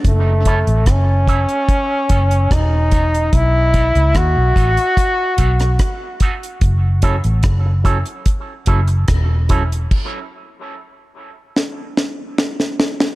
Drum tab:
CC |----------------|----------------|----------------|x---------------|
HH |x-xxx-xxx-xxx-xx|x-xxx-xxx-xxx-xx|x-xxx-xxx-xxx-xx|----------------|
SD |----r-------r---|----r------rr---|----r-------r---|--------o-o-oooo|
BD |o-o-o-o-o-o-o-o-|o-o-o-o-o-o-o-o-|o-o-o-o-o-o-o-o-|o---------------|